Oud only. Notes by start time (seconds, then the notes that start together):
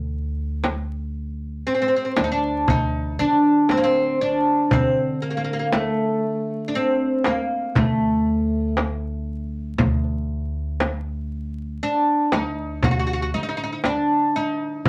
1.67 C4
1.75 C4
1.82 C4
1.88 C4
1.96 C4
2.05 C4
2.16 D4
2.24 D#4
2.32 D4
2.70 D#4
3.19 D4
3.71 C4
3.77 A#3
3.84 C4
4.21 D4
4.73 C4
5.22 A#3
5.30 A#3
5.37 A#3
5.44 A#3
5.53 A#3
5.59 A#3
5.73 A3
6.68 D4
6.75 C4
7.27 A#3
7.77 A3
11.83 D4
12.33 D#4
12.84 F#4
12.91 F#4
12.99 F#4
13.07 F#4
13.13 F#4
13.22 F#4
13.34 D#4
13.43 D#4
13.49 D#4
13.57 D#4
13.64 D#4
13.73 D#4
13.85 D4
14.36 D#4